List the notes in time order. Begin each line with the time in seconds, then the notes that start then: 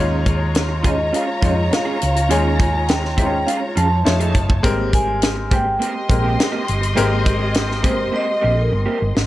Already playing: D#2 G#3 C#4 D#4 F4 G#4 C#5 A#5
0.26 kick, closed hi-hat
0.39 muted clean electric guitar stroke
0.55 snare, closed hi-hat
0.69 muted clean electric guitar stroke
0.83 G#3 C#4 D#4 F4 G#4 C#5 D#5, kick, closed hi-hat
0.98 muted clean electric guitar stroke
1.12 C#4 F4 G#4 F5, closed hi-hat
1.27 muted clean electric guitar stroke
1.41 F2 G#3 C#4 D#4 F4 G#4 C#5 D#5, kick, closed hi-hat
1.56 muted clean electric guitar stroke
1.71 F5, muted clean electric guitar stroke, snare, closed hi-hat
1.85 C#4 F4 G#4
2.00 C#2, muted clean electric guitar stroke, closed hi-hat
2.15 muted clean electric guitar stroke, closed hi-hat
2.29 D#2 G#3 C#4 D#4 F4 G#4 C#5 G#5, closed hi-hat
2.60 kick, closed hi-hat
2.73 muted clean electric guitar stroke
2.88 G5, snare, closed hi-hat
3.03 muted clean electric guitar stroke, snare
3.17 G#3 C#4 D#4 F4 G#4 C5, kick, closed hi-hat
3.25 C#5
3.32 muted clean electric guitar stroke
3.47 C#4 F4 G#4 F5, closed hi-hat
3.61 muted clean electric guitar stroke
3.76 F2 C#4 F4 G#4 A5, closed hi-hat
3.91 muted clean electric guitar stroke
4.05 F2 A3 D#4 F4 C#5 A5, muted clean electric guitar stroke, snare, closed hi-hat
4.20 A3 D#4 G#4, closed hi-hat
4.34 F#1, muted clean electric guitar stroke, kick, closed hi-hat
4.49 muted clean electric guitar stroke, kick
4.63 G#1 G3 G#3 A#3 C4 G4 A#4, kick, closed hi-hat
4.93 G#5, kick, closed hi-hat
5.08 muted clean electric guitar stroke
5.22 snare, closed hi-hat
5.36 muted clean electric guitar stroke
5.51 G#3 A#3 C4 G4 C5 G5, kick, closed hi-hat
5.65 muted clean electric guitar stroke
5.79 A#3 C4 G4 D#5 C6, closed hi-hat
6.09 A#1 G#3 C4 G4 A#4, muted clean electric guitar stroke, kick, closed hi-hat
6.23 A#3 C4 G4
6.37 muted clean electric guitar stroke, snare, closed hi-hat
6.52 A#3 C4 G4
6.67 G1, muted clean electric guitar stroke, closed hi-hat
6.81 muted clean electric guitar stroke, closed hi-hat
6.95 G#1 G#3 A#3 C4 G4 A#4, closed hi-hat
7.26 kick, closed hi-hat
7.39 muted clean electric guitar stroke
7.54 snare, closed hi-hat
7.69 muted clean electric guitar stroke, snare
7.83 G#3 A#3 C4 G4 G#4 C5, kick, closed hi-hat
7.91 A#4
7.98 muted clean electric guitar stroke
8.12 A#3 C4 G4
8.16 D#5
8.27 muted clean electric guitar stroke
8.41 A#1 A#3 C4 G4
8.53 A4, muted clean electric guitar stroke
8.61 A#4
8.72 G1, muted clean electric guitar stroke
8.86 A#3 C4 G4
9.01 G1, muted clean electric guitar stroke
9.15 G#1, muted clean electric guitar stroke, snare